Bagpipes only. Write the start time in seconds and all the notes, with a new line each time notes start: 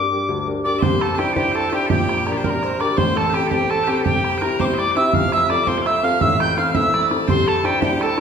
0.64 D5
0.79 C5 E5
1.01 A4
1.15 C5
1.19 G4
1.33 G4 A4
1.52 A4 C5
1.69 C5
1.74 G4
1.87 G4 A4
2.33 D5
2.37 C5
2.44 A#4
2.80 D5
2.97 C5
3.17 A4
3.30 G4 C5
3.47 G4 A4
3.70 A4
3.84 C5
3.88 G4
3.95 A4 C5
4.05 G4
4.38 A#4 C5
4.59 C5
4.74 D5 E5
4.92 E5 G5
5.14 F5
5.33 E5
5.50 D5
5.64 E5
5.68 C5
5.78 F5 G5
5.86 E5
6.04 F5
6.22 E5
6.40 G5
6.57 F5
6.75 E5
6.94 D5
7.28 C5
7.46 A4
7.81 G4
8.02 A4